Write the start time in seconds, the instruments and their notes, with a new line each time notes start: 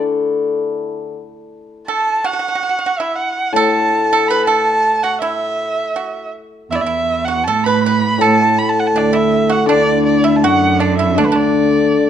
Already playing: hammered dulcimer D3 A3 D4 E4 A4
1.88 pipa A4, erhu A5
2.24 pipa F#4, erhu F#5
2.33 pipa F#4
2.39 pipa F#4
2.48 pipa F#4
2.55 pipa F#4
2.63 pipa F#4
2.69 pipa F#4
2.79 pipa F#4
2.86 pipa F#4
2.99 pipa E4, erhu E5
3.15 erhu F#5
3.53 hammered dulcimer A2, pipa A4, erhu A5
4.13 pipa A4
4.28 pipa B4, erhu B5
4.45 pipa A4, erhu A5
5.03 pipa F#4, erhu F#5
5.21 pipa E4, erhu E5
5.96 pipa F#4
6.70 cello E2, pipa E4, erhu E5
6.75 erhu D5
6.81 erhu E5
6.85 cello E2, pipa E4
7.24 pipa F#4, erhu F#5
7.44 pipa A4, erhu A5
7.49 cello A2
7.64 pipa B4, erhu B5
7.83 pipa B4, erhu B5
8.18 hammered dulcimer A2, pipa A4, erhu A5
8.23 cello A2
8.58 erhu B5
8.69 erhu A5
8.79 erhu F#5
8.87 erhu A5
8.95 cello D2, pipa D4, erhu D5
9.13 pipa E4, erhu E5
9.49 pipa F#4, erhu F#5
9.66 cello D2, hammered dulcimer D3, pipa D4, erhu D5
10.06 erhu D5
10.24 pipa E4, erhu E5
10.36 erhu A5
10.44 cello F#2, pipa F#4, erhu F#5
10.80 pipa D4, erhu D5
10.97 pipa E4, erhu E5
11.15 hammered dulcimer D3, pipa D4, erhu D5
11.19 cello D2
11.25 erhu B4
11.31 cello D2, pipa D4
11.35 erhu D5